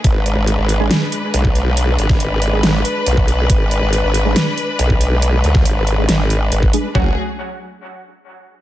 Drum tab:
HH |x-x-x-x-x-x-x-x-|x-x-x-x-x-x-x-x-|x-x-x-x-x-x-x-x-|x-x-x-x-x-x-x-x-|
SD |--------o-------|---o----o-------|--------o-------|---o----o-------|
FT |----------------|----------------|----------------|----------------|
BD |o------------o--|---o---------o--|o------------o--|---o---------o--|

HH |----------------|
SD |----------------|
FT |o---------------|
BD |o---------------|